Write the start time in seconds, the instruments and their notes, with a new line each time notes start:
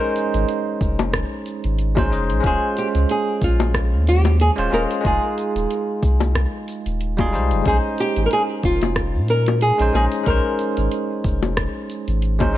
Already playing: tine electric piano G#3 C#4 D#4 C5 D#5, nylon-string guitar A#4
0.16 closed hi-hat, cabasa
0.34 sub bass G#1, closed hi-hat, cabasa
0.49 closed hi-hat, cabasa
0.81 sub bass F1, kick, closed hi-hat, cabasa
0.99 closed hi-hat, high bongo, cabasa
1.13 kick, cross-stick, closed hi-hat, cabasa
1.46 closed hi-hat, cabasa
1.64 sub bass G#1, closed hi-hat, cabasa
1.79 closed hi-hat, cabasa
1.95 tine electric piano G#3 C#4 D#4 C5, kick, closed hi-hat, high bongo
2.09 sub bass F1, tine electric piano G#3 C#4 D#4 D#5, cabasa
2.30 sub bass A#1, closed hi-hat, cabasa
2.40 sub bass D#1, tine electric piano G#3 C#4, kick, closed hi-hat
2.45 tine electric piano F4 C5, nylon-string guitar G#4, cabasa
2.77 nylon-string guitar G4, closed hi-hat, cabasa
2.95 sub bass C#2, closed hi-hat, cabasa
3.09 nylon-string guitar G#4, closed hi-hat, cabasa
3.42 sub bass A#1, nylon-string guitar F4, kick, closed hi-hat, cabasa
3.60 closed hi-hat, high bongo, cabasa
3.74 kick, cross-stick, closed hi-hat, cabasa
3.93 sub bass D#2
4.07 nylon-string guitar G4, closed hi-hat, cabasa
4.25 closed hi-hat, high bongo, cabasa
4.40 nylon-string guitar G#4, closed hi-hat, cabasa
4.56 sub bass D#1, tine electric piano G#3 C#4 F4 C5, closed hi-hat
4.70 sub bass D#1, tine electric piano G#3 C#4 F4 D#5, nylon-string guitar A#4, high bongo, cabasa
4.91 closed hi-hat, cabasa
5.01 sub bass F1, tine electric piano G#3 D#4, kick, closed hi-hat
5.06 tine electric piano F4 G#4, nylon-string guitar G#4, cabasa
5.38 closed hi-hat, cabasa
5.56 sub bass D#1, closed hi-hat, cabasa
5.71 closed hi-hat, cabasa
6.03 sub bass C2, kick, closed hi-hat, cabasa
6.20 closed hi-hat, high bongo, cabasa
6.35 kick, cross-stick, closed hi-hat, cabasa
6.68 closed hi-hat, cabasa
6.86 sub bass D#1, closed hi-hat, cabasa
7.01 closed hi-hat, cabasa
7.17 tine electric piano G3 D#4 F4 G#4, kick, closed hi-hat, high bongo
7.32 sub bass C2, tine electric piano G3 D#4 F4 C5, cabasa
7.51 sub bass F1, closed hi-hat, cabasa
7.62 tine electric piano G#3 C#4, kick, closed hi-hat
7.66 sub bass A#1, tine electric piano D#4 C5, nylon-string guitar G#4, cabasa
7.98 nylon-string guitar G4, closed hi-hat, cabasa
8.16 sub bass G#1, closed hi-hat, cabasa
8.26 nylon-string guitar A#4
8.31 nylon-string guitar G#4, closed hi-hat, cabasa
8.63 sub bass F1, nylon-string guitar F4, kick, closed hi-hat, cabasa
8.82 closed hi-hat, high bongo, cabasa
8.96 kick, cross-stick, closed hi-hat, cabasa
9.15 sub bass A#2
9.28 nylon-string guitar A#4, closed hi-hat, cabasa
9.46 closed hi-hat, high bongo, cabasa
9.61 nylon-string guitar G#4, closed hi-hat, cabasa
9.78 sub bass A#1, tine electric piano G#3 C#4 D#4 C5, closed hi-hat
9.93 sub bass A#1, tine electric piano G#3 C#4 D#4 D#5, nylon-string guitar G#4, high bongo, cabasa
10.12 closed hi-hat, cabasa
10.23 sub bass A#1, tine electric piano G#3 C#4, nylon-string guitar A#4, kick, closed hi-hat
10.27 tine electric piano D#4 C5, cabasa
10.59 closed hi-hat, cabasa
10.77 sub bass G#1, closed hi-hat, cabasa
10.91 closed hi-hat, cabasa
11.24 sub bass F1, kick, closed hi-hat, cabasa
11.43 closed hi-hat, high bongo, cabasa
11.57 kick, cross-stick, closed hi-hat, cabasa
11.90 closed hi-hat, cabasa
12.08 sub bass G#1, closed hi-hat, cabasa
12.22 closed hi-hat, cabasa
12.39 tine electric piano G#3 C#4 D#4 C5, kick, closed hi-hat, high bongo
12.53 tine electric piano G#3 C#4